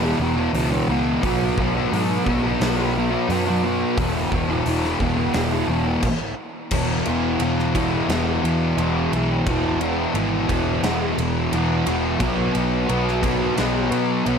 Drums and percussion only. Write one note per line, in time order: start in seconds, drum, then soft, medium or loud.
0.54 open hi-hat medium
1.23 kick loud
1.23 open hi-hat medium
1.58 kick medium
1.93 open hi-hat medium
2.26 kick medium
2.61 snare loud
2.61 open hi-hat medium
3.30 open hi-hat medium
3.98 kick loud
3.98 open hi-hat medium
4.32 kick medium
4.66 open hi-hat medium
4.84 snare soft
5.00 kick medium
5.34 snare loud
5.34 open hi-hat medium
6.02 kick medium
6.02 crash medium
6.71 kick loud
6.71 crash loud
7.06 ride medium
7.40 ride loud
7.59 snare soft
7.75 kick medium
7.75 ride medium
8.09 snare loud
8.09 ride loud
8.45 ride medium
8.78 ride medium
9.13 ride medium
9.47 kick loud
9.47 ride medium
9.81 ride medium
10.15 ride medium
10.49 kick medium
10.49 ride medium
10.84 snare loud
10.84 ride loud
11.19 ride medium
11.53 ride loud
11.87 ride medium
12.20 kick loud
12.20 ride loud
12.55 ride medium
12.89 ride loud
13.08 snare soft
13.23 kick medium
13.23 ride medium
13.58 snare loud
13.58 ride medium
13.92 ride medium
14.26 ride medium